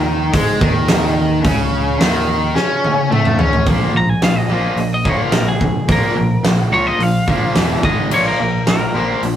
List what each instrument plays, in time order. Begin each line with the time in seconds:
Already playing: picked electric bass D#2, overdriven electric guitar D#3
0.33 picked electric bass G#2, overdriven electric guitar G#3, kick, open hi-hat
0.60 picked electric bass D#2, overdriven electric guitar D#3, kick
0.88 snare, open hi-hat
1.43 picked electric bass C#2, overdriven electric guitar C#3, kick, open hi-hat
1.99 picked electric bass D#2, overdriven electric guitar D#3, snare, open hi-hat
2.55 picked electric bass C#3, overdriven electric guitar C#4, snare
2.84 high tom
3.11 picked electric bass A2, overdriven electric guitar A3, mid tom
3.25 mid tom
3.39 picked electric bass C#3, overdriven electric guitar C#4, floor tom
3.53 floor tom
3.66 picked electric bass A#1, overdriven electric guitar A#2 F3 A#3, kick, open hi-hat
3.94 picked electric bass A#1, overdriven electric guitar A#2 F3, lead electric guitar A#5
4.10 lead electric guitar G#5
4.22 picked electric bass A#1, overdriven electric guitar A#2 F3, lead electric guitar F5, snare, open hi-hat
4.38 lead electric guitar D#5
4.49 picked electric bass A#1, overdriven electric guitar A#2 F3 A#3
4.76 picked electric bass A#1, overdriven electric guitar A#2 F3, open hi-hat
4.94 lead electric guitar D#5
5.05 overdriven electric guitar A#2 F3 A#3, kick
5.09 lead electric guitar C#5
5.22 lead electric guitar A#4
5.32 picked electric bass A#1, overdriven electric guitar A#2 F3, snare, open hi-hat
5.48 lead electric guitar G#4
5.60 picked electric bass A#1, overdriven electric guitar A#2 F3, kick
5.88 picked electric bass A#1, overdriven electric guitar A#2 F3 A#3, lead electric guitar A#4, kick, open hi-hat
6.14 picked electric bass A#1, overdriven electric guitar A#2 F3
6.43 picked electric bass A#1, overdriven electric guitar A#2 F3, snare, open hi-hat
6.70 picked electric bass C#2, overdriven electric guitar A#2 F3 A#3, lead electric guitar C#5
6.87 lead electric guitar D#5
6.99 picked electric bass A#1, overdriven electric guitar A#2 F3, lead electric guitar F5, open hi-hat
7.28 picked electric bass A#1, overdriven electric guitar A#2 F3 A#3, kick
7.55 picked electric bass E1, overdriven electric guitar E2 B2 E3, snare, open hi-hat
7.83 picked electric bass G#1, overdriven electric guitar G#2 D#3 G#3, lead electric guitar D#5, kick
8.10 picked electric bass A#1, overdriven electric guitar A#2 F3 A#3, lead electric guitar C#5, crash
8.28 lead electric guitar A#4
8.38 picked electric bass A#1, overdriven electric guitar A#2 F3
8.67 picked electric bass A#1, overdriven electric guitar A#2 F3, lead electric guitar A#4, snare, open hi-hat
8.94 picked electric bass A#1, overdriven electric guitar A#2 F3 A#3
9.23 picked electric bass A#1, overdriven electric guitar A#2 F3, open hi-hat